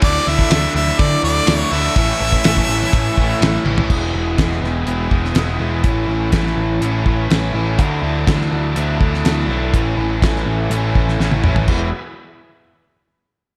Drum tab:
CC |----------------|----------------|x---------------|----------------|
RD |b---b---b---b---|b---b---b---b---|----------------|----------------|
HH |----------------|----------------|----x---x---x---|x---x---x---x---|
SD |--o-o--o----o---|----o--o----o---|----ooo----oo---|----oo------o---|
T1 |----------------|--------------o-|----------------|----------------|
T2 |----------------|----------------|----------------|----------------|
FT |----------------|---------------o|----------------|----------------|
BD |o--o----o-------|o--o-o--o-o-----|o---o-----o-----|o---o-----o-----|

CC |----------------|----------------|x---------------|
RD |----------------|----------------|----------------|
HH |x---x---x---x---|x---x---x-------|----------------|
SD |----oo-----oo---|----oo-----oo---|----------------|
T1 |----------------|-------------o--|----------------|
T2 |----------------|--------------o-|----------------|
FT |----------------|---------------o|----------------|
BD |o---o-----o-----|o---o-----o-----|o---------------|